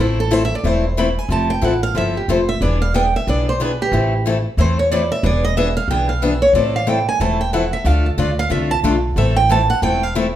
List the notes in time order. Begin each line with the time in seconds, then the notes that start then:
Already playing: A1
0.00 E3 A3 C4 E4 A4
0.20 A4
0.31 E3 A3 C4 E4 A4 C5
0.45 E5
0.55 D5
0.64 E1 E3 A3 C4 E4 A4 C5
0.97 E3 A3 C4 E4 A4 B5
1.19 G#5
1.29 F1 F3 C4 E4 A4 A5
1.50 G5
1.61 A1 F3 C4 E4 A4 F#5
1.83 F5
1.95 G1 F3 C4 E4 A4 E5
2.17 G4
2.28 F1 F3 C4 E4 A4 C5
2.49 E5
2.61 E1 E3 B3 D4 G#4 D5
2.82 F5
2.94 E3 B3 D4 G#4 G5
3.16 E5
3.27 B1 E3 B3 D4 G#4 D5
3.49 C5
3.60 E3 B3 D4 G#4 B4
3.82 G4
3.92 A1 E3 A3 C4 E4 A4
4.26 E3 A3 C4 E4 A4
4.57 E2 E3 A3 C4 E4 A4 C5
4.79 C#5
4.91 E3 A3 C4 E4 A4 D5
5.12 E5
5.23 E1 E3 B3 D4 G#4 D5
5.44 D#5
5.57 E3 B3 D4 G#4 E5
5.77 F5
5.88 B1 E3 B3 D4 G#4 G5
6.09 F5
6.22 E3 B3 D4 G#4 E5
6.42 C#5
6.53 A1 E3 A3 C4 E4 A4 D5
6.76 F5
6.87 E3 A3 C4 E4 A4 G5
7.09 G#5
7.20 E1 E3 A3 C4 E4 A4 A5
7.41 G5
7.53 E3 A3 C4 E4 A4 F#5
7.73 E5
7.84 D2 D3 A3 D4 F4 A4 F5
8.06 A4
8.18 D2 D3 A3 D4 F4 A4 D5
8.39 F5
8.50 C2 D3 A3 D4 F4 A4 E5
8.71 A5
8.83 B1 D3 A3 D4 F4 A4
9.16 A1 E3 A3 C4 E4 A4 E5
9.36 G5
9.49 E3 A3 C4 E4 A4 A5
9.70 F#5
9.82 E1 E3 A3 C4 E4 A4 G5
10.03 F5
10.15 E3 A3 C4 E4 A4 E5